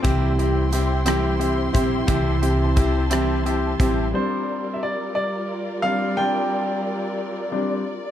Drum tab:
HH |xxxxxx|xxxxxx|------|------|
SD |--rr--|---r--|------|------|
BD |o----o|o-o--o|------|------|